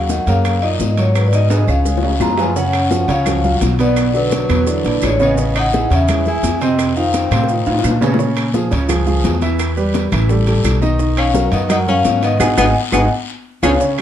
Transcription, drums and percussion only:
0.09 high bongo, high conga, short guiro, maracas
0.27 high conga, high timbale, short guiro, maracas
0.45 high bongo, high conga, high timbale, long guiro, claves, maracas
0.62 high bongo, high conga, high timbale
0.80 high bongo, low bongo, high conga, short guiro, maracas
0.97 high bongo, high timbale, short guiro, maracas
1.15 high bongo, high conga, high timbale, long guiro, claves, maracas
1.33 high bongo, high conga, high timbale, maracas
1.50 high bongo, high conga, high timbale, short guiro, maracas
1.68 high conga, short guiro, claves, maracas
1.85 high bongo, high conga, long guiro, maracas
1.98 low bongo
2.03 high conga, low timbale
2.20 low bongo, high conga, low timbale, short guiro, claves, maracas
2.33 low bongo
2.38 high conga, low timbale, short guiro, maracas
2.44 low bongo
2.56 high bongo, high conga, long guiro, maracas
2.73 high bongo, high conga, high timbale, claves, maracas
2.91 high bongo, high conga, short guiro, maracas
3.09 high conga, high timbale, short guiro, maracas
3.26 high bongo, high conga, low conga, high timbale, long guiro, claves, maracas
3.44 high bongo, high conga, low conga, maracas
3.61 high bongo, low bongo, high conga, high timbale, short guiro, maracas
3.79 high bongo, high timbale, short guiro, maracas
3.96 high bongo, high timbale, long guiro, claves, maracas
4.14 high bongo, high conga, maracas
4.32 high bongo, high conga, high timbale, short guiro, maracas
4.49 high conga, high timbale, short guiro, claves, maracas
4.67 high bongo, high conga, long guiro, maracas
4.84 high bongo, high conga, high timbale, maracas
5.02 high bongo, low bongo, high conga, high timbale, short guiro, claves, maracas
5.20 high bongo, high conga, short guiro, maracas
5.38 high bongo, high conga, long guiro, maracas
5.55 high bongo, high conga, high timbale, claves, maracas
5.73 high bongo, high conga, short guiro, maracas
5.91 high conga, high timbale, short guiro, maracas
6.08 high bongo, high conga, low conga, high timbale, long guiro, claves, maracas
6.26 high bongo, high conga, low conga, maracas
6.43 high bongo, low bongo, high conga, high timbale, short guiro, maracas
6.61 high bongo, high timbale, short guiro, maracas
6.79 high bongo, high conga, high timbale, long guiro, claves, maracas
6.96 high bongo, high conga, maracas
7.14 high bongo, high conga, high timbale, short guiro, maracas
7.31 high bongo, high conga, high timbale, short guiro, claves, maracas
7.43 high bongo
7.49 high conga, long guiro, maracas
7.66 high conga, high timbale, maracas
7.79 low bongo
7.84 high conga, high timbale, short guiro, claves, maracas
7.90 low bongo
8.01 high conga, low timbale, short guiro, maracas
8.14 low bongo
8.19 high bongo, high conga, long guiro, maracas
8.36 high bongo, high conga, high timbale, claves, maracas
8.54 high bongo, high conga, short guiro, maracas
8.71 high conga, high timbale, short guiro, maracas
8.89 high bongo, high conga, low conga, high timbale, long guiro, claves, maracas
9.06 high bongo, high conga, low conga, maracas
9.24 high bongo, low bongo, high conga, high timbale, low timbale, short guiro, maracas
9.41 high bongo, high conga, high timbale, short guiro, maracas
9.59 high bongo, high timbale, long guiro, claves, maracas
9.77 high bongo, high conga, maracas
9.94 high bongo, high conga, high timbale, short guiro, maracas
10.12 high conga, high timbale, short guiro, claves, maracas
10.29 high bongo, high conga, long guiro, maracas
10.47 high bongo, high conga, high timbale, maracas
10.64 high bongo, low bongo, high conga, high timbale, short guiro, claves, maracas
10.82 high bongo, high conga, short guiro, maracas
10.99 high bongo, high conga, long guiro, maracas
11.17 high bongo, high conga, high timbale, claves, maracas
11.34 high bongo, high conga, short guiro, maracas
11.52 high conga, high timbale, short guiro, maracas
11.70 high bongo, high conga, low conga, high timbale, long guiro, claves, maracas
11.87 high bongo, high conga, low conga, maracas
12.05 high bongo, low bongo, high conga, high timbale, short guiro, maracas
12.22 high bongo, high timbale, short guiro, maracas
12.40 low bongo, high conga, high timbale, long guiro, claves, maracas
12.58 low bongo, high conga, high timbale, long guiro, claves, maracas
12.93 low bongo, high conga, high timbale, long guiro, claves, maracas
13.63 low bongo, high conga, high timbale, long guiro, claves, maracas
13.81 high bongo, high conga, long guiro, maracas
13.98 high conga, high timbale, claves

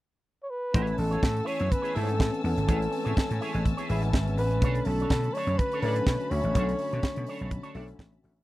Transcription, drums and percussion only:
0.74 kick, closed hi-hat
0.87 closed hi-hat
0.98 open hi-hat
1.12 closed hi-hat
1.23 kick, snare
1.36 closed hi-hat
1.47 open hi-hat
1.60 closed hi-hat
1.72 kick, closed hi-hat
1.85 closed hi-hat
1.96 open hi-hat
2.09 closed hi-hat
2.20 kick, snare
2.34 closed hi-hat
2.45 open hi-hat
2.57 closed hi-hat
2.69 kick, closed hi-hat
2.82 closed hi-hat
2.92 open hi-hat
3.07 closed hi-hat
3.17 kick, snare
3.30 closed hi-hat
3.42 open hi-hat
3.54 closed hi-hat
3.66 kick, closed hi-hat
3.78 closed hi-hat
3.90 open hi-hat
4.03 closed hi-hat
4.13 kick, snare
4.27 closed hi-hat
4.38 open hi-hat
4.51 closed hi-hat
4.62 kick, closed hi-hat
4.75 closed hi-hat
4.85 open hi-hat
5.00 closed hi-hat
5.10 kick, snare
5.23 closed hi-hat
5.35 open hi-hat
5.47 closed hi-hat
5.59 kick, closed hi-hat
5.72 closed hi-hat
5.82 open hi-hat
5.96 closed hi-hat
6.07 kick, snare
6.20 closed hi-hat
6.31 open hi-hat
6.43 closed hi-hat
6.55 kick, closed hi-hat
6.69 closed hi-hat
6.79 open hi-hat
6.93 closed hi-hat
7.03 kick, snare
7.16 closed hi-hat
7.26 open hi-hat
7.39 closed hi-hat
7.51 kick, closed hi-hat
7.63 closed hi-hat
7.75 open hi-hat
7.88 closed hi-hat
7.99 kick, snare
8.13 closed hi-hat
8.24 open hi-hat

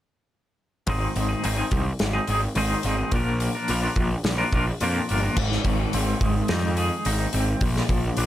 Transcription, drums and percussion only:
0.87 kick, open hi-hat
1.16 open hi-hat
1.44 open hi-hat
1.71 kick, open hi-hat
1.99 snare, open hi-hat
2.27 open hi-hat
2.55 open hi-hat
2.83 open hi-hat
3.12 kick, open hi-hat
3.40 open hi-hat
3.68 open hi-hat
3.96 kick, open hi-hat
4.24 snare, open hi-hat
4.53 kick, open hi-hat
4.80 open hi-hat
5.09 open hi-hat
5.36 kick, crash
5.52 snare
5.64 kick, open hi-hat
5.93 open hi-hat
6.21 kick, open hi-hat
6.48 snare, open hi-hat
6.77 open hi-hat
7.05 open hi-hat
7.33 open hi-hat
7.61 kick, open hi-hat
7.76 snare
7.89 kick, open hi-hat
8.17 open hi-hat

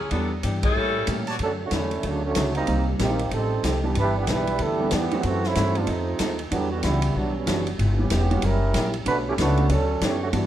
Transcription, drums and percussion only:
0.11 kick, ride
0.43 kick, hi-hat pedal, ride
0.63 kick, ride
1.07 kick, hi-hat pedal, ride
1.27 ride
1.39 kick, ride
1.71 kick, snare, hi-hat pedal, ride
1.91 ride
2.03 kick, ride
2.35 kick, snare, hi-hat pedal, ride
2.55 ride
2.67 kick, ride
2.99 kick, snare, hi-hat pedal, ride
3.19 ride
3.31 kick, ride
3.64 kick, snare, hi-hat pedal, ride
3.95 kick, ride
4.27 kick, snare, hi-hat pedal, ride
4.47 ride
4.59 kick, ride
4.91 kick, snare, hi-hat pedal, ride
5.11 ride
5.23 kick, ride
5.44 snare
5.55 kick, snare, hi-hat pedal, ride
5.75 ride
5.87 kick, ride
6.19 kick, snare, hi-hat pedal, ride
6.39 ride
6.52 kick, ride
6.83 kick, snare, hi-hat pedal, ride
7.02 ride
7.15 kick
7.47 kick, snare, hi-hat pedal, ride
7.67 ride
7.79 kick, ride
8.10 kick, snare, hi-hat pedal, ride
8.31 ride
8.42 kick, ride
8.74 kick, snare, hi-hat pedal, ride
8.93 ride
9.06 kick, ride
9.38 kick, snare, hi-hat pedal, ride
9.57 ride
9.69 kick, ride
10.01 kick, snare, hi-hat pedal, ride
10.33 kick, ride

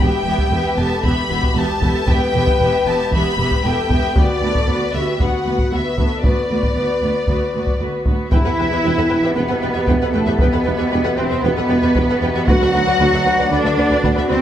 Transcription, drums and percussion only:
0.38 taiko
1.04 taiko
1.43 taiko
1.82 taiko
2.08 taiko
2.47 taiko
3.12 taiko
3.51 taiko
3.90 taiko
4.16 taiko
4.55 taiko
5.20 taiko
5.59 taiko
5.98 taiko
6.24 taiko
6.63 taiko
7.27 taiko
7.67 taiko
8.06 taiko
8.32 taiko
9.87 taiko
10.39 taiko
11.95 taiko
12.48 taiko
14.04 taiko

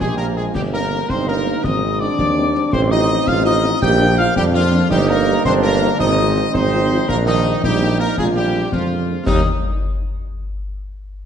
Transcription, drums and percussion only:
0.01 concert bass drum, snare
0.55 concert bass drum, snare, crash
1.10 concert bass drum, snare
1.28 snare
1.46 snare
1.64 concert bass drum, snare
2.19 concert bass drum, snare
2.55 snare
2.73 concert bass drum, snare, crash
3.27 concert bass drum, snare
3.46 snare
3.64 snare
3.82 concert bass drum, snare
4.36 concert bass drum, snare
4.73 snare
4.91 concert bass drum, snare, crash
5.45 concert bass drum, snare
5.64 snare
5.82 snare
6.00 concert bass drum, snare
6.54 concert bass drum, snare
6.91 snare
7.09 concert bass drum, snare, crash
7.64 concert bass drum, snare
7.82 snare
8.00 snare
8.17 concert bass drum, snare
8.72 concert bass drum, snare
9.26 concert bass drum, snare, crash

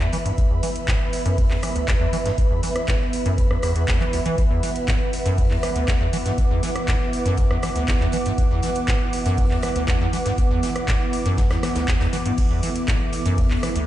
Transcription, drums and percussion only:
0.00 clap, closed hi-hat
0.13 closed hi-hat, open hi-hat
0.26 closed hi-hat
0.38 kick, closed hi-hat
0.63 snare, closed hi-hat, open hi-hat
0.76 closed hi-hat
0.88 kick, snare, clap, closed hi-hat
1.13 snare, closed hi-hat, open hi-hat
1.26 closed hi-hat
1.38 kick, closed hi-hat, open hi-hat
1.51 clap
1.63 cross-stick, closed hi-hat, open hi-hat
1.76 closed hi-hat
1.88 kick, snare, clap, closed hi-hat
2.13 closed hi-hat, open hi-hat
2.26 snare, closed hi-hat
2.38 kick, closed hi-hat
2.63 snare, closed hi-hat, open hi-hat
2.76 cross-stick, closed hi-hat
2.88 kick, snare, clap, closed hi-hat
3.01 snare
3.13 closed hi-hat, open hi-hat
3.26 closed hi-hat
3.38 kick, closed hi-hat
3.51 cross-stick
3.62 cross-stick, closed hi-hat, open hi-hat
3.76 closed hi-hat
3.88 kick, snare, clap, closed hi-hat
4.00 clap, closed hi-hat
4.13 closed hi-hat, open hi-hat
4.26 closed hi-hat
4.38 kick, closed hi-hat
4.63 snare, closed hi-hat, open hi-hat
4.76 closed hi-hat
4.88 kick, snare, clap, closed hi-hat
5.13 snare, closed hi-hat, open hi-hat
5.26 closed hi-hat
5.38 kick, closed hi-hat, open hi-hat
5.51 clap
5.63 cross-stick, closed hi-hat, open hi-hat
5.76 closed hi-hat
5.88 kick, snare, clap, closed hi-hat
6.13 closed hi-hat, open hi-hat
6.26 snare, closed hi-hat
6.38 kick, closed hi-hat
6.63 snare, closed hi-hat, open hi-hat
6.76 cross-stick, closed hi-hat
6.88 kick, snare, clap, closed hi-hat
7.01 snare
7.13 closed hi-hat, open hi-hat
7.26 closed hi-hat
7.37 kick, closed hi-hat
7.51 cross-stick
7.62 cross-stick, closed hi-hat, open hi-hat
7.76 closed hi-hat
7.88 kick, snare, clap, closed hi-hat
8.01 clap, closed hi-hat
8.12 closed hi-hat, open hi-hat
8.26 closed hi-hat
8.38 kick, closed hi-hat
8.63 snare, closed hi-hat, open hi-hat
8.75 closed hi-hat
8.88 kick, snare, clap, closed hi-hat
9.13 snare, closed hi-hat, open hi-hat
9.26 closed hi-hat
9.37 kick, closed hi-hat, open hi-hat
9.51 clap
9.62 cross-stick, closed hi-hat, open hi-hat
9.76 closed hi-hat
9.87 kick, snare, clap, closed hi-hat
10.13 closed hi-hat, open hi-hat
10.25 snare, closed hi-hat
10.38 kick, closed hi-hat
10.63 snare, closed hi-hat, open hi-hat
10.76 cross-stick, closed hi-hat
10.88 kick, snare, clap, closed hi-hat
11.00 snare
11.13 closed hi-hat, open hi-hat
11.26 closed hi-hat
11.37 kick, snare, closed hi-hat
11.50 cross-stick, snare, closed hi-hat
11.63 cross-stick, snare, closed hi-hat, open hi-hat
11.75 snare, closed hi-hat
11.88 kick, snare, clap, closed hi-hat
12.00 snare, clap, closed hi-hat
12.13 closed hi-hat, open hi-hat
12.26 closed hi-hat
12.38 kick, closed hi-hat, crash
12.63 snare, closed hi-hat, open hi-hat
12.75 closed hi-hat
12.88 kick, snare, clap, closed hi-hat
13.13 snare, closed hi-hat, open hi-hat
13.26 closed hi-hat
13.38 kick, closed hi-hat, open hi-hat
13.51 clap
13.63 cross-stick, closed hi-hat, open hi-hat
13.76 closed hi-hat

